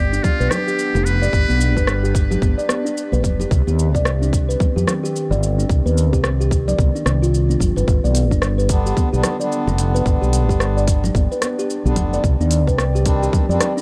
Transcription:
Already playing: G1 B3 D4 G4 D5 G5
0.13 D4, shaker
0.23 F4, kick, high conga, low conga, shaker
0.40 B1 B4, shaker
0.50 G4, cross-stick, high bongo, low conga, shaker
0.68 G4, shaker
0.79 shaker
0.95 F1 G4, high bongo, shaker
1.05 B4, shaker
1.22 D5, high conga, shaker
1.33 G1, kick, shaker
1.48 B1 D4, high conga, shaker
1.61 shaker
1.76 G1 B4, kick, high bongo, shaker
1.87 cross-stick, shaker
2.03 G4, shaker
2.15 kick, shaker
2.31 G4, high bongo, low conga, shaker
2.42 G1, kick, high conga, shaker
2.58 D5, high bongo, shaker
2.69 cross-stick, high conga, shaker
2.85 D4, shaker
2.98 shaker
3.12 B1 B4, high conga, shaker
3.23 F1, kick, low conga, shaker
3.40 G4, high bongo, high conga, shaker
3.51 C2 C4, kick, shaker
3.67 D#2 D#3 G4, high conga, shaker
3.79 shaker
3.94 C2 D5, kick, shaker
4.05 cross-stick, shaker
4.22 D4, shaker
4.33 kick, shaker
4.49 B4, shaker
4.60 kick, high conga, low conga, shaker
4.76 F2 G4, shaker
4.87 cross-stick, high bongo, low conga, shaker
5.03 G4, shaker
5.16 shaker
5.31 G1 D5, high bongo, shaker
5.43 shaker
5.58 D4, high conga, shaker
5.69 C2, kick, shaker
5.85 D#2 B4, high conga, shaker
5.98 shaker
6.13 C2 G4, kick, high bongo, shaker
6.24 cross-stick, shaker
6.40 G4, shaker
6.51 kick, shaker
6.68 D5, high bongo, low conga, shaker
6.79 C2, kick, high conga, shaker
6.95 D4, high bongo, shaker
7.05 C2, cross-stick, high conga, shaker
7.22 F4, shaker
7.34 shaker
7.49 D4, high conga, shaker
7.60 G1, kick, low conga, shaker
7.76 G1 B4, high bongo, high conga, shaker
7.88 G1 B3, kick, shaker
8.04 B1 G4 D5, high conga, shaker
8.15 D4, closed hi-hat, shaker
8.26 D5
8.31 G1 D4, kick, shaker
8.42 cross-stick, shaker
8.58 B4, shaker
8.69 D3 G3 B3 D4, kick, closed hi-hat, shaker
8.86 G4, shaker
8.97 kick, high conga, low conga, shaker
9.12 B1 D3 G3 B3 D4 G4, shaker
9.23 cross-stick, closed hi-hat, high bongo, low conga, shaker
9.39 D3 G3 B3 D4 D5, shaker
9.52 shaker
9.60 G5
9.67 F1 D4, high bongo, shaker
9.78 closed hi-hat, shaker
9.95 B4, high conga, shaker
10.06 G1, kick, shaker
10.21 B1 G4, high conga, shaker
10.33 closed hi-hat, shaker
10.49 G1 G4, kick, high bongo, shaker
10.60 cross-stick, shaker
10.77 D5, shaker
10.86 D3 G3 B3 D4, kick, closed hi-hat, shaker
11.04 D4, high bongo, low conga, shaker
11.15 G1, kick, high conga, shaker
11.32 B4, high bongo, shaker
11.42 cross-stick, closed hi-hat, high conga, shaker
11.59 G4, shaker
11.70 shaker
11.84 B1 D3 G3 B3 D4 G4, high conga, shaker
11.96 F1, kick, closed hi-hat, low conga, shaker
12.13 D5, high bongo, high conga, shaker
12.24 C2 C4, kick, shaker
12.40 D#2 D4, high conga, shaker
12.51 closed hi-hat, shaker
12.67 C2 D#3 B4, kick, shaker
12.78 cross-stick, shaker
12.95 G4, shaker
13.04 D#3 G3 C4 D4, kick, closed hi-hat, shaker
13.22 G4, shaker
13.33 kick, high conga, low conga, shaker
13.48 F2 D#3 G3 C4 D4 D5, shaker
13.61 cross-stick, closed hi-hat, high bongo, low conga, shaker
13.74 D#3 G3 C4 D4, shaker

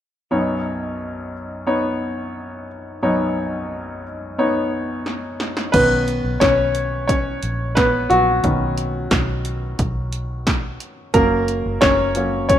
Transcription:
0.31 B1 F#2 B3 D#4 C#5
1.67 B3 D#4 C#5
3.02 B1 F#2 B3 D#4 C#5
4.38 B3 D#4 C#5
5.06 snare
5.40 snare
5.57 snare
5.72 B1 D#3 B3 C#4 B4, kick, closed hi-hat, crash
6.08 closed hi-hat
6.24 B1
6.40 B1 C#4 C#5, kick, snare, closed hi-hat
6.75 closed hi-hat
7.08 C#4 C#5, kick, closed hi-hat
7.43 A#1, closed hi-hat
7.75 B3 B4, kick, snare, closed hi-hat
8.10 A#1 F#3 F#4, closed hi-hat
8.43 B1 D#3 B3 C#4, kick, closed hi-hat
8.78 closed hi-hat
9.11 B1, kick, snare, closed hi-hat
9.45 closed hi-hat
9.79 B1, kick, closed hi-hat
10.12 closed hi-hat
10.47 kick, snare, closed hi-hat
10.80 closed hi-hat
11.14 F#1 F#3 A#3 C#4 A#4, kick, closed hi-hat
11.48 closed hi-hat
11.66 F#1
11.81 F#1 C#4 C#5, kick, snare, closed hi-hat
12.15 F#3 A#3 C#4, closed hi-hat
12.49 C#4 C#5, kick, closed hi-hat

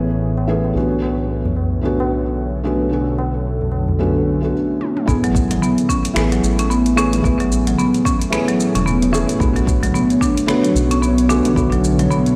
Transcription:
Already playing: A1 A2 E3 A3 B3 C#4 G#4 C#5
0.38 tabla na, tabla tin
0.47 E3 A3 B3 C#4 G#4
0.64 tabla na, tabla tin
0.73 B1 B2 D3 A3 B3 C#4
0.77 F#4
1.02 tabla na
1.19 tabla tin
1.36 F#3
1.45 A4, tabla ge
1.56 D3, tabla na
1.81 D3 A3 B3 C#4 F#4
2.00 tabla na
2.63 D3 A3 B3 C#4 F#4
2.89 D3 A3 B3 C#4, tabla na
2.93 F#4
3.18 tabla na
3.34 tabla tin
3.61 tabla ge
3.72 tabla na
3.88 tabla ge
3.99 D3 A3 B3 C#4 F#4
4.16 tabla tin
4.41 D3 A3 B3 C#4
4.45 F#4
4.81 high tom
4.97 mid tom
5.06 A1 A2 E3 A3 B3 C#4 G#4, kick, shaker
5.24 F#3, closed hi-hat, shaker
5.35 kick, shaker
5.49 F#3 A3, closed hi-hat, mid tom, shaker
5.62 B3, shaker
5.78 closed hi-hat, shaker
5.89 B3 C#4, kick, shaker
6.05 closed hi-hat, shaker
6.14 A1 E3 A3 B3 C#4 G#4, finger snap, shaker
6.32 F#3, closed hi-hat, shaker
6.43 A1, shaker
6.55 G#4
6.59 C#4, closed hi-hat, shaker
6.68 B3 C#5, shaker
6.86 closed hi-hat, shaker
6.96 E3 A3 B3 C#4 G#4, shaker
7.13 closed hi-hat, mid tom, shaker
7.22 A1 E3 A3 B3 C#4, kick, shaker
7.26 G#4
7.40 F#3, closed hi-hat, shaker
7.52 shaker
7.67 F#3, closed hi-hat, mid tom, shaker
7.78 B3, shaker
7.94 closed hi-hat, shaker
8.05 C#4, kick, shaker
8.22 closed hi-hat, shaker
8.30 E3 A3 B3 C#4, finger snap, shaker
8.34 G#4
8.48 F#3, closed hi-hat, shaker
8.60 shaker
8.75 E1 C#4, closed hi-hat, mid tom, shaker
8.86 B3, shaker
9.02 closed hi-hat, mid tom, shaker
9.12 E3 A3 B3 C#4 G#4, shaker
9.29 closed hi-hat, shaker
9.38 B1 B2 D3 A3 B3 C#4 F#4, kick, shaker
9.56 F#3, closed hi-hat, shaker
9.67 kick, shaker
9.83 F#3, closed hi-hat, mid tom, shaker
9.94 B3, shaker
10.10 closed hi-hat, shaker
10.21 D4, kick, shaker
10.30 D3
10.37 closed hi-hat, shaker
10.46 D3 A3 B3 C#5, finger snap, shaker
10.50 F#4
10.64 F#3, closed hi-hat, shaker
10.75 B1, shaker
10.91 C#4, closed hi-hat, shaker
11.02 B3 A4, shaker
11.18 closed hi-hat, shaker
11.28 D3 A3 B3 C#4 D4 F#4, shaker
11.45 closed hi-hat, mid tom, shaker
11.54 B1 D3 A3 B3 C#5, kick, shaker
11.58 F#4
11.72 F#3, closed hi-hat, shaker
11.84 shaker
11.99 F#3, closed hi-hat, mid tom, shaker
12.10 B3, shaker
12.26 closed hi-hat, shaker

